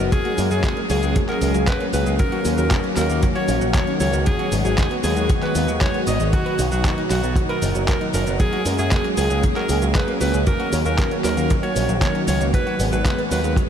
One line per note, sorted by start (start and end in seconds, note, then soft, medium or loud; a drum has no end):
0.00 0.10 F#1 medium
0.00 0.10 B2 medium
0.00 0.10 D#3 medium
0.00 6.29 F#3 medium
0.00 0.10 B3 medium
0.00 0.10 D#4 medium
0.00 0.10 F#4 medium
0.12 0.17 F#3 medium
0.12 2.17 G#3 medium
0.12 4.22 A#3 medium
0.12 4.22 C#4 medium
0.12 0.41 G#4 loud
0.12 2.17 G#4 loud
0.12 kick loud
0.12 closed hi-hat medium
0.12 cabasa soft
0.25 0.33 F#4 medium
0.25 closed hi-hat soft
0.38 0.49 F#2 medium
0.38 0.45 A#3 medium
0.38 open hi-hat loud
0.38 cabasa medium
0.51 0.62 F#2 medium
0.51 0.58 F#3 loud
0.51 0.80 G#4 medium
0.51 cabasa soft
0.64 0.68 G#3 loud
0.64 kick loud
0.64 clap loud
0.64 closed hi-hat medium
0.64 cabasa soft
0.77 0.81 A#3 medium
0.77 closed hi-hat soft
0.90 1.01 C#2 loud
0.90 0.97 F#3 medium
0.90 1.19 G#4 loud
0.90 open hi-hat loud
0.90 cabasa medium
1.03 1.14 C#2 medium
1.03 1.14 G#3 medium
1.03 closed hi-hat soft
1.03 cabasa soft
1.16 1.20 F#3 medium
1.16 kick loud
1.16 closed hi-hat medium
1.16 cabasa soft
1.29 1.36 F#4 medium
1.29 1.58 A#4 medium
1.29 clap soft
1.29 closed hi-hat soft
1.41 1.53 C#2 loud
1.41 1.49 A#3 medium
1.41 open hi-hat loud
1.41 cabasa medium
1.54 1.65 C#2 medium
1.54 1.62 F#3 loud
1.54 closed hi-hat soft
1.54 cabasa soft
1.67 1.72 G#3 loud
1.67 1.87 B4 loud
1.67 kick loud
1.67 clap loud
1.67 closed hi-hat loud
1.67 cabasa soft
1.80 1.85 A#3 medium
1.80 closed hi-hat soft
1.93 2.04 C#2 medium
1.93 2.01 F#3 medium
1.93 2.13 B4 medium
1.93 open hi-hat loud
1.93 cabasa medium
2.06 2.17 C#2 medium
2.06 2.17 G#3 medium
2.06 closed hi-hat soft
2.06 cabasa soft
2.19 8.36 D#3 medium
2.19 2.24 F#3 medium
2.19 8.36 F#4 loud
2.19 2.48 A#4 loud
2.19 kick loud
2.19 closed hi-hat medium
2.19 cabasa soft
2.32 2.39 F#4 medium
2.32 closed hi-hat soft
2.45 2.56 D#2 loud
2.45 2.52 C#4 medium
2.45 open hi-hat loud
2.45 cabasa medium
2.58 2.69 D#2 medium
2.58 2.65 F#3 loud
2.58 2.87 A#4 medium
2.58 closed hi-hat soft
2.58 cabasa soft
2.71 2.75 A#3 loud
2.71 kick loud
2.71 clap loud
2.71 closed hi-hat medium
2.71 cabasa soft
2.84 2.88 C#4 medium
2.84 closed hi-hat soft
2.97 3.08 D#2 loud
2.97 3.04 F#3 medium
2.97 3.26 A#4 loud
2.97 clap medium
2.97 open hi-hat loud
2.97 cabasa medium
3.10 3.21 D#2 medium
3.10 3.21 A#3 medium
3.10 closed hi-hat soft
3.10 cabasa soft
3.23 3.27 F#3 medium
3.23 kick loud
3.23 closed hi-hat medium
3.23 cabasa soft
3.36 3.43 F#4 medium
3.36 3.65 C#5 loud
3.36 closed hi-hat soft
3.48 3.59 A#1 medium
3.48 3.56 C#4 medium
3.48 open hi-hat loud
3.48 cabasa medium
3.61 3.72 A#1 medium
3.61 3.69 F#3 loud
3.61 closed hi-hat soft
3.61 cabasa soft
3.74 3.79 A#3 loud
3.74 3.94 C#5 medium
3.74 kick loud
3.74 clap loud
3.74 closed hi-hat medium
3.74 cabasa soft
3.87 3.92 C#4 medium
3.87 closed hi-hat soft
4.00 4.11 C#2 medium
4.00 4.08 F#3 medium
4.00 4.20 C#5 medium
4.00 open hi-hat loud
4.00 cabasa medium
4.13 4.24 C#2 medium
4.13 4.24 A#3 medium
4.13 closed hi-hat soft
4.13 cabasa soft
4.26 4.31 F#3 medium
4.26 6.31 G#3 medium
4.26 6.31 B3 medium
4.26 4.55 G#4 loud
4.26 kick loud
4.26 closed hi-hat medium
4.26 cabasa soft
4.39 4.46 F#4 medium
4.39 closed hi-hat soft
4.52 4.63 G#1 medium
4.52 4.59 B3 medium
4.52 open hi-hat loud
4.52 cabasa medium
4.65 4.76 G#1 medium
4.65 4.72 F#3 loud
4.65 4.94 G#4 medium
4.65 closed hi-hat soft
4.65 cabasa soft
4.78 4.82 G#3 loud
4.78 kick loud
4.78 clap loud
4.78 closed hi-hat medium
4.78 cabasa soft
4.91 4.95 B3 medium
4.91 closed hi-hat soft
5.04 5.15 D#2 medium
5.04 5.11 F#3 medium
5.04 5.33 G#4 loud
5.04 open hi-hat loud
5.04 cabasa medium
5.17 5.28 D#2 medium
5.17 5.28 G#3 medium
5.17 closed hi-hat soft
5.17 cabasa soft
5.29 5.34 F#3 medium
5.29 kick loud
5.29 closed hi-hat medium
5.29 cabasa soft
5.42 5.50 F#4 medium
5.42 5.72 B4 medium
5.42 clap soft
5.42 closed hi-hat soft
5.55 5.66 D#2 medium
5.55 5.63 B3 medium
5.55 open hi-hat loud
5.55 cabasa medium
5.68 5.79 D#2 medium
5.68 5.76 F#3 loud
5.68 closed hi-hat soft
5.68 cabasa soft
5.81 5.86 G#3 loud
5.81 6.01 C#5 medium
5.81 kick loud
5.81 clap loud
5.81 closed hi-hat medium
5.81 cabasa soft
5.94 5.99 B3 medium
5.94 closed hi-hat soft
6.07 6.18 G#1 medium
6.07 6.14 F#3 medium
6.07 6.26 D#5 medium
6.07 open hi-hat loud
6.07 cabasa medium
6.20 6.31 G#1 medium
6.20 6.31 G#3 medium
6.20 closed hi-hat soft
6.20 cabasa soft
6.33 8.38 B2 medium
6.33 6.37 F#3 medium
6.33 10.43 F#3 medium
6.33 8.38 D#4 medium
6.33 6.62 F#4 loud
6.33 kick loud
6.33 closed hi-hat medium
6.33 cabasa soft
6.46 6.53 B4 medium
6.46 closed hi-hat soft
6.59 6.70 B1 medium
6.59 6.66 D#4 medium
6.59 open hi-hat loud
6.59 cabasa medium
6.72 6.83 B1 medium
6.72 6.79 F#3 loud
6.72 7.01 F#4 medium
6.72 closed hi-hat soft
6.72 cabasa soft
6.84 6.89 B3 loud
6.84 kick loud
6.84 clap loud
6.84 closed hi-hat medium
6.84 cabasa soft
6.98 7.02 D#4 medium
6.98 closed hi-hat soft
7.10 7.21 B1 medium
7.10 7.18 F#3 medium
7.10 7.40 F#4 medium
7.10 clap medium
7.10 open hi-hat loud
7.10 cabasa medium
7.24 7.34 B1 medium
7.24 7.35 B3 medium
7.24 closed hi-hat soft
7.24 cabasa soft
7.36 7.41 F#3 medium
7.36 kick loud
7.36 closed hi-hat medium
7.36 cabasa soft
7.49 7.78 A#4 medium
7.49 7.57 B4 medium
7.49 closed hi-hat soft
7.62 7.73 F#1 medium
7.62 7.70 D#4 medium
7.62 open hi-hat loud
7.62 cabasa medium
7.75 7.86 F#1 medium
7.75 7.83 F#3 loud
7.75 closed hi-hat soft
7.75 cabasa soft
7.88 7.92 B3 loud
7.88 8.07 A#4 medium
7.88 kick loud
7.88 clap loud
7.88 closed hi-hat medium
7.88 cabasa soft
8.01 8.05 D#4 medium
8.01 closed hi-hat soft
8.14 8.25 F#1 loud
8.14 8.21 F#3 medium
8.14 8.33 A#4 loud
8.14 open hi-hat loud
8.14 cabasa medium
8.27 8.38 F#1 medium
8.27 8.38 B3 medium
8.27 closed hi-hat soft
8.27 cabasa soft
8.40 8.44 F#3 medium
8.40 10.45 G#3 medium
8.40 12.50 A#3 medium
8.40 12.50 C#4 medium
8.40 10.45 G#4 medium
8.40 8.69 G#4 loud
8.40 kick loud
8.40 closed hi-hat medium
8.40 cabasa soft
8.53 8.60 F#4 medium
8.53 closed hi-hat soft
8.66 8.77 F#2 loud
8.66 8.73 A#3 medium
8.66 open hi-hat loud
8.66 cabasa medium
8.79 8.90 F#2 medium
8.79 8.86 F#3 loud
8.79 9.08 G#4 loud
8.79 closed hi-hat soft
8.79 cabasa soft
8.91 8.96 G#3 loud
8.91 kick loud
8.91 clap loud
8.91 closed hi-hat medium
8.91 cabasa soft
9.04 9.09 A#3 medium
9.04 closed hi-hat soft
9.17 9.28 C#2 medium
9.17 9.25 F#3 medium
9.17 9.47 G#4 loud
9.17 open hi-hat loud
9.17 cabasa medium
9.30 9.41 C#2 medium
9.30 9.41 G#3 medium
9.30 closed hi-hat soft
9.30 cabasa soft
9.43 9.48 F#3 medium
9.43 kick loud
9.43 closed hi-hat loud
9.43 cabasa soft
9.56 9.64 F#4 medium
9.56 9.85 A#4 loud
9.56 clap soft
9.56 closed hi-hat soft
9.69 9.80 C#2 loud
9.69 9.77 A#3 medium
9.69 open hi-hat loud
9.69 cabasa medium
9.82 9.93 C#2 medium
9.82 9.89 F#3 loud
9.82 cabasa soft
9.95 9.99 G#3 loud
9.95 10.14 B4 medium
9.95 kick loud
9.95 clap loud
9.95 closed hi-hat loud
9.95 cabasa soft
10.08 10.12 A#3 medium
10.08 closed hi-hat soft
10.21 10.32 C#2 medium
10.21 10.28 F#3 medium
10.21 10.40 B4 loud
10.21 open hi-hat loud
10.21 cabasa medium
10.34 10.45 C#2 medium
10.34 10.45 G#3 medium
10.34 closed hi-hat soft
10.34 cabasa soft
10.47 13.69 D#3 medium
10.47 13.69 F#3 medium
10.47 10.51 F#3 medium
10.47 13.69 F#4 medium
10.47 10.76 A#4 loud
10.47 kick loud
10.47 closed hi-hat medium
10.47 cabasa soft
10.60 10.67 F#4 medium
10.60 closed hi-hat soft
10.73 10.83 D#2 medium
10.73 10.80 C#4 medium
10.73 open hi-hat loud
10.73 cabasa medium
10.85 10.96 D#2 medium
10.85 10.93 F#3 loud
10.85 11.15 A#4 loud
10.85 closed hi-hat soft
10.85 cabasa soft
10.98 11.03 A#3 loud
10.98 kick loud
10.98 clap loud
10.98 closed hi-hat loud
10.98 cabasa soft
11.11 11.16 C#4 medium
11.11 closed hi-hat soft
11.24 11.35 D#2 medium
11.24 11.32 F#3 medium
11.24 11.53 A#4 loud
11.24 clap medium
11.24 open hi-hat loud
11.24 cabasa medium
11.37 11.48 D#2 medium
11.37 11.48 A#3 medium
11.37 closed hi-hat soft
11.37 cabasa soft
11.50 11.55 F#3 medium
11.50 kick loud
11.50 closed hi-hat medium
11.50 cabasa soft
11.63 11.70 F#4 medium
11.63 11.92 C#5 medium
11.63 closed hi-hat soft
11.76 11.87 A#1 medium
11.76 11.83 C#4 medium
11.76 open hi-hat loud
11.76 cabasa medium
11.89 12.00 A#1 medium
11.89 11.96 F#3 loud
11.89 closed hi-hat soft
11.89 cabasa soft
12.01 12.06 A#3 loud
12.01 12.21 C#5 medium
12.01 kick loud
12.01 clap loud
12.01 closed hi-hat loud
12.01 cabasa soft
12.15 12.19 C#4 medium
12.15 closed hi-hat soft
12.28 12.39 C#2 medium
12.28 12.35 F#3 medium
12.28 12.47 C#5 medium
12.28 open hi-hat loud
12.28 cabasa medium
12.41 12.52 C#2 medium
12.41 12.52 A#3 medium
12.41 closed hi-hat soft
12.41 cabasa soft
12.54 12.58 F#3 medium
12.54 13.69 G#3 medium
12.54 13.69 B3 medium
12.54 12.83 B4 loud
12.54 kick loud
12.54 closed hi-hat loud
12.54 cabasa soft
12.67 12.74 F#4 medium
12.67 closed hi-hat soft
12.80 12.90 G#1 medium
12.80 12.87 B3 medium
12.80 open hi-hat loud
12.80 cabasa medium
12.93 13.03 G#1 medium
12.93 13.00 F#3 loud
12.93 13.22 B4 loud
12.93 closed hi-hat soft
12.93 cabasa soft
13.05 13.10 G#3 loud
13.05 kick loud
13.05 clap loud
13.05 closed hi-hat loud
13.05 cabasa soft
13.19 13.23 B3 medium
13.19 closed hi-hat soft
13.31 13.42 D#2 medium
13.31 13.39 F#3 medium
13.31 13.60 B4 loud
13.31 open hi-hat loud
13.31 cabasa medium
13.44 13.55 D#2 medium
13.44 13.55 G#3 medium
13.44 closed hi-hat soft
13.44 cabasa soft
13.56 13.62 F#3 medium
13.56 kick loud
13.56 closed hi-hat loud
13.56 cabasa soft